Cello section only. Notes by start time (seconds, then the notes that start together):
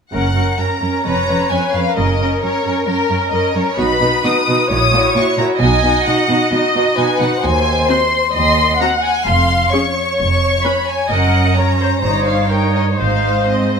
0.11 F#2
0.34 F#2
0.57 F#2
0.80 F#2
1.04 F2
1.27 F2
1.50 F2
1.73 F2
1.96 F#2
2.19 F#2
2.42 F#2
2.65 F#2
2.87 F#2
3.10 F#2
3.32 F#2
3.55 F#2
3.78 B2
4.01 B2
4.24 B2
4.48 B2
4.70 A#2
4.92 A#2
5.15 A#2
5.38 A#2
5.60 B2
5.83 B2
6.06 B2
6.28 B2
6.51 B2
6.75 B2
6.97 B2
7.19 B2
7.42 D#2
8.34 D#2
9.26 F2
10.18 F2
11.10 F#2
12.02 G2
12.99 G#2